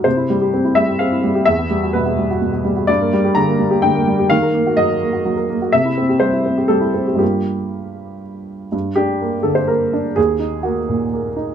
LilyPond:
<<
  \new Staff \with { instrumentName = "Upright piano" } { \time 3/4 \key c \mixolydian \tempo 4 = 126 c''4. e''8 f''4 | e''4 b'4. r8 | d''4 bes''4 g''4 | f''4 ees''2 |
e''4 c''4 a'4 | g'2 r4 | r8 g'4 a'16 c''16 bes'4 | aes'4 ges'4. r8 | }
  \new Staff \with { instrumentName = "Upright piano" } { \time 3/4 \key c \mixolydian c16 e'16 g16 g'16 c'16 e'16 g16 g'16 c'16 e'16 g16 g'16 | e,16 b16 g16 fis'16 b,16 b16 g16 fis'16 b,16 b16 g16 fis'16 | g,16 bes16 g16 g'16 d16 bes16 g16 g'16 d16 bes16 g16 g'16 | ees16 bes'16 bes16 ges'16 ges16 bes'16 bes16 ges'16 ges16 bes'16 bes16 ges'16 |
c16 e'16 c'16 g'16 g16 e'16 c'16 g'16 g16 e'16 c'16 g'16 | <g, g bes f'>2. | g,8 d'8 bes8 d8 bes8 d'8 | ees,8 ees'8 bes8 bes,8 bes8 ees'8 | }
>>